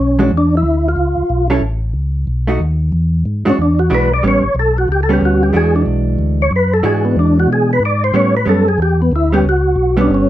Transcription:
0.00 0.30 B1 medium
0.00 0.31 C#4 medium
0.19 0.30 E3 medium
0.19 0.30 G#3 medium
0.19 0.30 D4 medium
0.19 0.30 F#4 medium
0.31 0.63 E2 medium
0.37 0.55 D4 medium
0.57 0.88 E4 medium
0.63 0.95 D2 medium
0.89 1.48 F4 medium
0.96 1.15 C#2 medium
1.17 1.23 C#2 soft
1.29 1.61 B1 medium
1.50 1.61 F#3 medium
1.50 1.61 C#4 medium
1.50 1.61 E4 medium
1.50 1.61 A4 medium
1.62 1.93 A1 medium
1.94 2.26 C#2 medium
2.27 2.59 B1 medium
2.47 2.58 A3 medium
2.47 2.59 D#4 medium
2.47 2.59 F#4 medium
2.60 2.91 D#2 medium
2.92 3.24 E2 medium
3.25 3.44 G#2 medium
3.45 3.53 G#2 soft
3.45 3.56 E3 medium
3.45 3.56 G#3 medium
3.45 3.57 D4 medium
3.45 3.57 F#4 medium
3.50 3.59 C#4 medium
3.58 3.89 E2 medium
3.58 3.80 D4 medium
3.79 3.91 F#4 medium
3.90 4.22 B1 medium
3.90 4.08 E3 medium
3.90 4.09 G#3 medium
3.90 4.09 D4 medium
3.90 4.09 F#4 medium
3.95 4.12 B4 medium
4.13 4.24 D5 loud
4.22 4.42 A1 medium
4.22 4.41 G3 medium
4.22 4.42 B3 medium
4.22 4.42 C#4 medium
4.28 4.56 C#5 medium
4.43 4.49 A1 soft
4.55 4.87 B1 medium
4.59 4.77 A4 medium
4.78 4.89 F#4 medium
4.88 5.20 C#2 medium
4.88 5.01 G4 medium
5.03 5.12 A4 medium
5.09 5.51 G3 medium
5.09 5.52 B3 medium
5.09 5.52 C#4 medium
5.13 5.22 G4 medium
5.21 5.53 D2 medium
5.25 5.43 F#4 medium
5.43 5.54 G4 medium
5.53 5.85 E2 medium
5.53 6.44 E3 medium
5.53 6.44 G#3 medium
5.53 6.44 D4 medium
5.53 6.44 F#4 medium
5.53 5.75 G#4 medium
5.76 5.83 D4 medium
5.86 6.18 B1 medium
6.19 6.50 D2 medium
6.42 6.52 C#5 medium
6.51 6.83 F#2 medium
6.56 6.74 B4 medium
6.74 6.84 A4 medium
6.83 7.16 G#2 medium
6.83 7.74 E3 medium
6.83 7.74 G#3 medium
6.83 7.75 D4 medium
6.83 7.74 F#4 medium
6.83 7.05 G#4 medium
7.05 7.16 B3 medium
7.16 7.48 E2 medium
7.16 7.38 D4 medium
7.40 7.50 F#4 medium
7.47 7.80 B2 medium
7.53 7.71 G#4 medium
7.73 7.83 B4 medium
7.80 8.12 G#2 medium
7.85 8.03 D5 medium
8.04 8.15 C5 medium
8.13 8.46 A2 medium
8.13 8.32 G3 medium
8.13 8.33 B3 medium
8.13 8.33 C#4 medium
8.13 8.35 C#5 medium
8.37 8.48 B4 medium
8.45 8.78 F#2 medium
8.45 8.65 G3 medium
8.45 8.65 B3 medium
8.45 8.66 C#4 medium
8.45 8.68 A4 medium
8.68 8.80 G#4 loud
8.78 9.11 E2 medium
8.78 9.01 G4 medium
9.02 9.13 B3 medium
9.12 9.44 D2 medium
9.12 9.34 E4 medium
9.32 9.44 G3 medium
9.32 9.44 B3 medium
9.32 9.44 C#4 medium
9.32 9.45 G4 loud
9.44 9.76 C#2 loud
9.49 9.96 F#4 medium
9.76 10.08 B1 medium
9.97 10.29 G3 medium
9.97 10.29 B3 medium
9.97 10.29 C#4 medium
10.01 10.11 D4 medium
10.09 10.29 G1 medium
10.14 10.29 C#4 medium

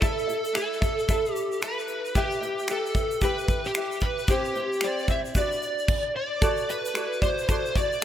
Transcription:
0.01 0.28 E4 medium
0.01 0.56 A4 medium
0.01 0.28 A4 medium
0.01 0.28 B4 medium
0.01 0.26 E5 medium
0.01 kick loud
0.01 shaker medium
0.18 shaker soft
0.27 0.54 E4 soft
0.27 0.54 A4 soft
0.27 0.55 E5 soft
0.27 shaker soft
0.45 shaker soft
0.46 shaker soft
0.53 0.82 E4 medium
0.53 1.33 A4 medium
0.53 0.81 B4 medium
0.53 0.80 E5 medium
0.53 finger snap medium
0.53 shaker medium
0.73 shaker soft
0.81 1.07 E4 soft
0.81 1.09 A4 soft
0.81 1.08 E5 soft
0.81 kick medium
0.81 shaker soft
0.99 shaker soft
1.08 1.62 E4 medium
1.08 1.62 A4 medium
1.08 1.61 B4 medium
1.08 1.63 E5 medium
1.08 kick medium
1.08 shaker medium
1.25 shaker soft
1.33 1.63 G4 medium
1.33 shaker soft
1.52 shaker soft
1.61 2.15 E4 medium
1.61 2.16 A4 medium
1.61 2.15 B4 medium
1.61 2.17 B4 medium
1.61 2.17 E5 medium
1.61 finger snap loud
1.61 shaker medium
1.79 shaker soft
1.88 shaker soft
2.05 shaker soft
2.15 2.42 E4 medium
2.15 2.42 G4 medium
2.15 2.66 G4 medium
2.15 2.41 B4 medium
2.15 2.40 E5 medium
2.15 kick medium
2.15 shaker medium
2.31 shaker soft
2.41 2.68 E4 soft
2.41 2.68 B4 soft
2.41 2.68 E5 soft
2.41 shaker soft
2.59 shaker soft
2.68 2.95 E4 medium
2.68 2.95 G4 medium
2.68 3.20 A4 medium
2.68 2.96 B4 medium
2.68 2.94 E5 medium
2.68 finger snap medium
2.68 shaker medium
2.86 shaker soft
2.95 3.21 E4 soft
2.95 3.22 B4 soft
2.95 3.22 E5 soft
2.95 kick medium
2.95 shaker soft
3.11 shaker soft
3.21 3.75 E4 medium
3.21 3.74 G4 medium
3.21 3.75 B4 medium
3.21 3.67 B4 medium
3.21 3.76 E5 medium
3.21 kick medium
3.21 shaker medium
3.38 shaker soft
3.48 kick medium
3.48 shaker soft
3.65 4.04 G4 medium
3.65 shaker soft
3.75 4.28 E4 medium
3.75 4.27 G4 medium
3.75 4.29 B4 medium
3.75 4.30 E5 medium
3.75 finger snap loud
3.75 shaker medium
3.92 shaker soft
4.01 4.30 B4 medium
4.01 kick medium
4.01 shaker soft
4.18 shaker soft
4.28 4.55 C4 medium
4.28 4.55 G4 medium
4.28 kick loud
4.28 shaker medium
4.29 4.55 E4 medium
4.29 4.84 G4 medium
4.29 4.52 C5 medium
4.29 shaker medium
4.45 shaker soft
4.54 4.81 C4 soft
4.54 4.82 E4 soft
4.54 4.81 C5 medium
4.54 shaker soft
4.73 shaker soft
4.81 5.09 C4 medium
4.81 5.08 G4 medium
4.81 finger snap loud
4.81 shaker medium
4.83 5.08 E4 medium
4.83 5.07 C5 medium
4.83 5.10 D5 medium
4.83 shaker medium
4.99 shaker soft
5.08 5.36 E4 soft
5.08 5.35 C5 soft
5.08 kick medium
5.08 shaker soft
5.10 5.36 C4 soft
5.10 5.18 E5 medium
5.10 shaker soft
5.25 shaker soft
5.35 6.39 D4 medium
5.35 6.39 F#4 medium
5.35 5.89 B4 medium
5.35 6.39 D5 medium
5.35 6.13 D5 medium
5.35 kick medium
5.35 shaker medium
5.52 shaker soft
5.62 shaker soft
5.79 shaker soft
5.88 kick loud
5.88 crash medium
6.16 6.71 D5 medium
6.41 6.95 E4 medium
6.41 6.95 F#4 medium
6.41 6.94 A4 medium
6.41 6.95 D5 medium
6.41 kick loud
6.41 shaker medium
6.57 shaker soft
6.70 7.23 B4 medium
6.70 shaker soft
6.85 shaker medium
6.85 shaker soft
6.94 7.22 E4 medium
6.94 7.22 F#4 medium
6.94 7.21 A4 medium
6.94 7.20 D5 medium
6.94 finger snap medium
6.94 shaker medium
7.13 shaker soft
7.22 7.48 E4 soft
7.22 7.49 F#4 soft
7.22 7.48 C5 medium
7.22 7.48 D5 medium
7.22 kick medium
7.22 shaker soft
7.38 shaker soft
7.48 7.76 E4 medium
7.48 7.76 F#4 medium
7.48 7.75 A4 medium
7.48 7.76 C5 medium
7.48 7.74 D5 medium
7.48 kick medium
7.48 shaker medium
7.66 shaker soft
7.75 8.02 E4 soft
7.75 8.03 F#4 soft
7.75 8.02 D5 soft
7.75 8.04 D5 loud
7.75 kick medium
7.75 shaker soft
7.92 shaker soft

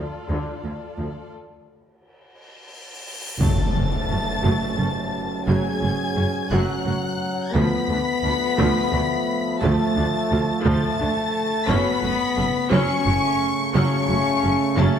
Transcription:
0.00 1.30 F4 medium
0.00 1.30 A4 soft
0.00 1.30 D5 soft
0.29 0.37 D2 medium
0.29 0.62 D3 medium
0.64 0.72 D2 soft
0.64 0.72 A3 soft
0.98 1.06 D2 soft
0.98 1.07 F3 soft
1.33 cymbal swell soft
3.39 3.48 F#1 medium
3.39 3.48 F#2 medium
3.39 7.49 F#3 medium
3.39 3.73 F#3 medium
3.39 5.43 A3 medium
3.39 3.73 A3 medium
3.39 7.50 C#4 medium
3.39 5.44 A5 medium
3.39 5.44 A6 loud
3.39 impact medium
3.75 3.84 F#1 medium
3.75 3.83 F#2 medium
3.75 3.83 A3 medium
3.75 3.83 C#4 medium
4.09 4.18 F#1 medium
4.09 4.17 F#2 medium
4.09 4.18 C#4 medium
4.09 4.18 F#4 medium
4.43 4.52 F#1 medium
4.43 4.51 F#2 medium
4.43 4.76 F#3 medium
4.43 4.76 A3 medium
4.77 4.87 F#1 medium
4.77 4.85 F#2 medium
4.77 4.86 A3 medium
4.77 4.86 C#4 medium
5.47 5.56 F#1 medium
5.47 5.55 F#2 medium
5.47 5.80 F#3 medium
5.47 5.80 A3 medium
5.47 6.49 G#4 medium
5.47 6.49 G#5 medium
5.47 6.49 G#6 loud
5.82 5.90 F#1 medium
5.82 5.90 F#2 medium
5.82 5.90 A3 medium
5.82 5.90 C#4 medium
6.16 6.25 F#1 medium
6.16 6.24 F#2 medium
6.16 6.24 C#4 medium
6.16 6.24 F#4 medium
6.49 6.59 F#1 medium
6.49 6.59 F#2 loud
6.49 7.54 F#3 medium
6.49 6.83 F#3 medium
6.49 6.83 A3 medium
6.49 7.54 F#5 medium
6.49 7.55 F#6 loud
6.85 6.94 F#1 medium
6.85 6.93 F#2 medium
6.85 6.94 A3 medium
6.85 6.94 C#4 medium
7.53 7.62 D2 medium
7.53 7.63 D2 loud
7.53 11.51 F3 medium
7.53 7.87 F3 medium
7.53 11.51 A3 medium
7.53 7.87 A3 medium
7.53 9.61 B3 loud
7.53 9.58 B5 loud
7.53 9.61 B6 loud
7.89 7.97 D2 medium
7.89 7.98 D2 medium
7.89 7.97 A3 medium
7.89 7.98 D4 medium
8.23 8.31 D2 medium
8.23 8.32 D2 medium
8.23 8.32 D4 medium
8.23 8.32 F4 medium
8.58 8.66 D2 loud
8.58 8.90 F3 loud
8.58 8.90 A3 medium
8.92 9.00 D2 medium
8.92 9.01 D2 medium
8.92 9.00 A3 medium
8.92 9.00 D4 medium
9.61 9.70 D2 loud
9.61 9.94 F3 medium
9.61 10.63 A3 loud
9.61 9.94 A3 loud
9.61 10.63 A5 loud
9.61 10.62 A6 loud
9.96 10.04 D2 medium
9.96 10.05 D2 medium
9.96 10.05 A3 medium
9.96 10.05 D4 medium
10.31 10.39 D2 medium
10.31 10.40 D2 medium
10.31 10.39 D4 medium
10.31 10.39 F4 medium
10.64 10.73 D2 loud
10.64 10.97 F3 loud
10.64 10.96 A3 loud
10.64 11.67 A3 loud
10.64 11.66 A5 loud
10.64 11.66 A6 loud
10.99 11.08 D2 medium
10.99 11.07 A3 medium
10.99 11.07 D4 medium
11.67 11.77 F#1 loud
11.67 11.76 F#2 loud
11.67 14.99 C#3 loud
11.67 12.00 F#3 loud
11.67 14.99 A3 loud
11.67 12.72 B3 loud
11.67 12.00 C#4 loud
11.67 12.72 B5 loud
11.67 12.71 B6 loud
12.02 12.11 F#1 medium
12.02 12.10 F#2 medium
12.02 12.11 A3 medium
12.02 12.11 F#4 medium
12.36 12.46 F#1 medium
12.36 12.44 F#2 medium
12.36 12.45 C#4 medium
12.36 12.45 A4 medium
12.71 12.80 F#1 loud
12.71 12.80 F#2 loud
12.71 13.03 F#3 loud
12.71 13.03 C#4 loud
12.71 13.58 C#4 loud
12.71 13.73 C#6 loud
12.71 13.74 C#7 loud
13.05 13.14 F#1 medium
13.05 13.14 F#2 medium
13.05 13.13 A3 medium
13.05 13.13 F#4 medium
13.74 13.84 F#1 loud
13.74 13.83 F#2 medium
13.74 14.07 F#3 loud
13.74 14.07 C#4 loud
13.74 14.77 C#4 loud
13.74 14.76 C#6 loud
13.74 14.77 C#7 loud
14.09 14.17 F#1 medium
14.09 14.17 F#2 medium
14.09 14.17 A3 medium
14.09 14.17 F#4 medium
14.43 14.52 F#1 medium
14.43 14.51 F#2 medium
14.43 14.52 C#4 medium
14.43 14.52 A4 medium
14.77 14.86 F#1 loud
14.77 14.85 F#2 loud
14.77 14.99 F#3 loud
14.77 14.99 A3 medium
14.77 14.99 C#4 loud
14.77 14.99 A5 loud
14.77 14.99 A6 loud

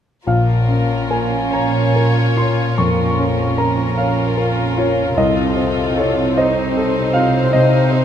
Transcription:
0.26 2.73 A#1 soft
0.26 5.14 A#2 soft
0.26 2.73 C#4 soft
0.26 3.94 F4 soft
0.26 1.49 A#4 soft
0.26 1.08 F5 soft
0.68 1.37 C#4 soft
1.11 1.79 A#4 soft
1.11 1.51 G#5 soft
1.52 2.77 C#5 soft
1.52 2.21 C#5 soft
1.52 2.33 A#5 soft
1.96 2.62 A#4 soft
2.37 3.02 F4 soft
2.37 2.75 C6 soft
2.77 3.43 F2 soft
2.77 5.13 C#4 soft
2.77 5.17 A#4 soft
2.77 3.54 C#6 soft
3.18 3.82 C#4 soft
3.58 4.22 A#4 soft
3.58 3.95 A#5 soft
3.96 5.14 F4 soft
3.96 4.62 C#5 soft
3.96 4.74 F5 soft
4.37 5.01 A#4 soft
4.77 5.18 F4 soft
4.77 5.15 C#5 soft
5.17 7.49 C2 soft
5.17 8.05 C3 soft
5.17 8.05 C4 soft
5.17 6.35 F4 soft
5.17 6.37 A4 soft
5.17 5.93 D#5 medium
5.56 6.21 C4 soft
5.97 6.60 A4 soft
5.97 6.34 C#5 soft
6.37 7.53 D#4 soft
6.37 8.05 C5 soft
6.37 6.99 C5 soft
6.37 7.11 D#5 medium
6.77 7.38 A4 soft
7.14 7.77 F4 soft
7.14 7.50 F5 medium
7.53 8.05 C3 soft
7.53 8.05 D#4 soft
7.53 8.05 D#5 medium
7.92 8.05 C4 soft

